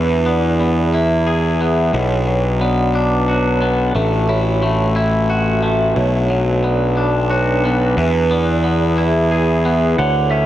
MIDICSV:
0, 0, Header, 1, 6, 480
1, 0, Start_track
1, 0, Tempo, 670391
1, 1389, Time_signature, 6, 3, 24, 8
1, 7489, End_track
2, 0, Start_track
2, 0, Title_t, "Electric slide guitar"
2, 0, Program_c, 0, 29
2, 7148, Note_on_c, 0, 78, 70
2, 7379, Note_on_c, 0, 76, 78
2, 7394, Note_off_c, 0, 78, 0
2, 7489, Note_off_c, 0, 76, 0
2, 7489, End_track
3, 0, Start_track
3, 0, Title_t, "Vibraphone"
3, 0, Program_c, 1, 11
3, 0, Note_on_c, 1, 71, 68
3, 188, Note_on_c, 1, 74, 61
3, 189, Note_off_c, 1, 71, 0
3, 668, Note_off_c, 1, 74, 0
3, 669, Note_on_c, 1, 76, 63
3, 1142, Note_off_c, 1, 76, 0
3, 1150, Note_on_c, 1, 76, 51
3, 1389, Note_on_c, 1, 73, 68
3, 1390, Note_off_c, 1, 76, 0
3, 1868, Note_on_c, 1, 74, 59
3, 1869, Note_off_c, 1, 73, 0
3, 2348, Note_on_c, 1, 73, 52
3, 2349, Note_off_c, 1, 74, 0
3, 2829, Note_off_c, 1, 73, 0
3, 2830, Note_on_c, 1, 69, 67
3, 3070, Note_off_c, 1, 69, 0
3, 3070, Note_on_c, 1, 73, 64
3, 3550, Note_off_c, 1, 73, 0
3, 3553, Note_on_c, 1, 76, 62
3, 4020, Note_off_c, 1, 76, 0
3, 4270, Note_on_c, 1, 73, 72
3, 4749, Note_on_c, 1, 74, 63
3, 4750, Note_off_c, 1, 73, 0
3, 5226, Note_on_c, 1, 73, 63
3, 5229, Note_off_c, 1, 74, 0
3, 5707, Note_off_c, 1, 73, 0
3, 5707, Note_on_c, 1, 71, 77
3, 5947, Note_off_c, 1, 71, 0
3, 5949, Note_on_c, 1, 74, 64
3, 6428, Note_off_c, 1, 74, 0
3, 6428, Note_on_c, 1, 76, 70
3, 6898, Note_off_c, 1, 76, 0
3, 6907, Note_on_c, 1, 76, 58
3, 7147, Note_off_c, 1, 76, 0
3, 7149, Note_on_c, 1, 73, 72
3, 7489, Note_off_c, 1, 73, 0
3, 7489, End_track
4, 0, Start_track
4, 0, Title_t, "Glass harmonica"
4, 0, Program_c, 2, 92
4, 0, Note_on_c, 2, 64, 50
4, 0, Note_on_c, 2, 68, 46
4, 0, Note_on_c, 2, 71, 44
4, 1374, Note_off_c, 2, 64, 0
4, 1375, Note_off_c, 2, 68, 0
4, 1387, Note_on_c, 2, 62, 47
4, 2798, Note_off_c, 2, 71, 0
4, 2814, Note_off_c, 2, 62, 0
4, 2825, Note_on_c, 2, 57, 54
4, 2826, Note_on_c, 2, 66, 51
4, 4253, Note_off_c, 2, 57, 0
4, 4253, Note_off_c, 2, 66, 0
4, 4275, Note_on_c, 2, 71, 47
4, 4280, Note_on_c, 2, 62, 56
4, 5697, Note_off_c, 2, 71, 0
4, 5699, Note_off_c, 2, 62, 0
4, 5711, Note_on_c, 2, 71, 62
4, 5712, Note_on_c, 2, 68, 50
4, 5714, Note_on_c, 2, 64, 55
4, 7134, Note_off_c, 2, 68, 0
4, 7134, Note_off_c, 2, 71, 0
4, 7135, Note_off_c, 2, 64, 0
4, 7154, Note_on_c, 2, 78, 64
4, 7155, Note_on_c, 2, 69, 49
4, 7489, Note_off_c, 2, 69, 0
4, 7489, Note_off_c, 2, 78, 0
4, 7489, End_track
5, 0, Start_track
5, 0, Title_t, "Clean electric guitar"
5, 0, Program_c, 3, 27
5, 0, Note_on_c, 3, 52, 54
5, 0, Note_on_c, 3, 59, 55
5, 183, Note_off_c, 3, 59, 0
5, 186, Note_on_c, 3, 59, 55
5, 423, Note_off_c, 3, 59, 0
5, 432, Note_on_c, 3, 59, 58
5, 674, Note_on_c, 3, 64, 51
5, 908, Note_on_c, 3, 68, 52
5, 1143, Note_off_c, 3, 59, 0
5, 1152, Note_off_c, 3, 52, 0
5, 1152, Note_on_c, 3, 59, 49
5, 1389, Note_off_c, 3, 68, 0
5, 1390, Note_off_c, 3, 59, 0
5, 1391, Note_on_c, 3, 47, 57
5, 1392, Note_off_c, 3, 64, 0
5, 1627, Note_on_c, 3, 54, 53
5, 1869, Note_on_c, 3, 59, 58
5, 2112, Note_on_c, 3, 62, 55
5, 2351, Note_on_c, 3, 66, 47
5, 2579, Note_off_c, 3, 59, 0
5, 2588, Note_on_c, 3, 59, 53
5, 2590, Note_off_c, 3, 47, 0
5, 2827, Note_off_c, 3, 59, 0
5, 2830, Note_on_c, 3, 57, 57
5, 2831, Note_off_c, 3, 62, 0
5, 3073, Note_on_c, 3, 64, 51
5, 3094, Note_off_c, 3, 54, 0
5, 3094, Note_off_c, 3, 66, 0
5, 3303, Note_off_c, 3, 57, 0
5, 3312, Note_on_c, 3, 57, 61
5, 3542, Note_off_c, 3, 64, 0
5, 3551, Note_on_c, 3, 64, 55
5, 3794, Note_on_c, 3, 66, 54
5, 4021, Note_off_c, 3, 57, 0
5, 4029, Note_on_c, 3, 57, 60
5, 4269, Note_off_c, 3, 57, 0
5, 4270, Note_off_c, 3, 64, 0
5, 4271, Note_on_c, 3, 47, 57
5, 4272, Note_off_c, 3, 66, 0
5, 4512, Note_on_c, 3, 54, 58
5, 4754, Note_on_c, 3, 59, 55
5, 4991, Note_on_c, 3, 62, 53
5, 5229, Note_on_c, 3, 66, 58
5, 5468, Note_off_c, 3, 59, 0
5, 5470, Note_off_c, 3, 47, 0
5, 5477, Note_on_c, 3, 59, 54
5, 5709, Note_off_c, 3, 54, 0
5, 5709, Note_off_c, 3, 66, 0
5, 5710, Note_off_c, 3, 62, 0
5, 5712, Note_on_c, 3, 52, 59
5, 5713, Note_off_c, 3, 59, 0
5, 5949, Note_on_c, 3, 59, 54
5, 6178, Note_off_c, 3, 59, 0
5, 6187, Note_on_c, 3, 59, 63
5, 6429, Note_on_c, 3, 64, 59
5, 6669, Note_on_c, 3, 68, 55
5, 6904, Note_off_c, 3, 59, 0
5, 6909, Note_off_c, 3, 52, 0
5, 6913, Note_on_c, 3, 59, 57
5, 7147, Note_off_c, 3, 64, 0
5, 7147, Note_off_c, 3, 68, 0
5, 7149, Note_off_c, 3, 59, 0
5, 7153, Note_on_c, 3, 50, 59
5, 7386, Note_on_c, 3, 61, 56
5, 7489, Note_off_c, 3, 50, 0
5, 7489, Note_off_c, 3, 61, 0
5, 7489, End_track
6, 0, Start_track
6, 0, Title_t, "Picked electric bass"
6, 0, Program_c, 4, 34
6, 0, Note_on_c, 4, 40, 62
6, 1360, Note_off_c, 4, 40, 0
6, 1384, Note_on_c, 4, 35, 61
6, 2798, Note_off_c, 4, 35, 0
6, 2826, Note_on_c, 4, 33, 67
6, 4239, Note_off_c, 4, 33, 0
6, 4269, Note_on_c, 4, 35, 62
6, 5680, Note_off_c, 4, 35, 0
6, 5707, Note_on_c, 4, 40, 65
6, 7117, Note_off_c, 4, 40, 0
6, 7149, Note_on_c, 4, 38, 73
6, 7489, Note_off_c, 4, 38, 0
6, 7489, End_track
0, 0, End_of_file